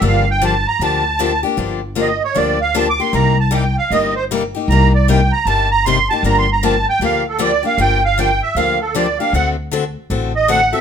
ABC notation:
X:1
M:4/4
L:1/16
Q:"Swing" 1/4=155
K:Gm
V:1 name="Accordion"
f2 g2 a2 b2 a6 z2 | z4 e2 ^c2 d2 f2 (3a2 d'2 =c'2 | b2 a2 g2 f2 e2 c2 z4 | b2 d2 g2 b2 a2 b2 c'2 a2 |
(3b2 c'2 b2 a2 g2 f2 A2 d2 f2 | g2 f2 g2 =e2 f2 A2 d2 f2 | ^f2 z8 e2 f2 =e2 |]
V:2 name="Steel-string acoustic guitar"
[D,F,B,DG]2 z2 [D,F,B,DG] z3 [D,F,B,DG]2 z2 [D,F,B,DG] z [B,DG]2 | [D,F,B,DG]2 z2 [D,F,B,DG] z3 [D,F,B,DG]2 z2 [D,F,B,DG] z [B,DG]2 | [C,G,B,EG]2 z2 [C,G,B,EG] z3 [C,G,B,EG]2 z2 [C,G,B,EG] z [B,EG]2 | [C,G,B,EG]2 z2 [C,G,B,EG] z3 [C,G,B,EG]2 z2 [C,G,B,EG] z [B,EG]2 |
[D,F,B,DG]2 z2 [D,F,B,DG] z3 [D,F,B,DG]2 z2 [D,F,B,DG] z [B,DG]2 | [D,F,B,DG]2 z2 [D,F,B,DG] z3 [D,F,B,DG]2 z2 [D,F,B,DG] z [B,DG]2 | [D,A,C^FA]2 z2 [D,A,CFA] z3 [D,A,CFA]2 z2 [D,A,CFA] z [CFA]2 |]
V:3 name="Upright bass" clef=bass
G,,,8 D,,8 | G,,,8 D,,8 | C,,8 G,,,8 | C,,8 G,,,8 |
G,,,8 D,,8 | G,,,8 D,,8 | D,,8 A,,,8 |]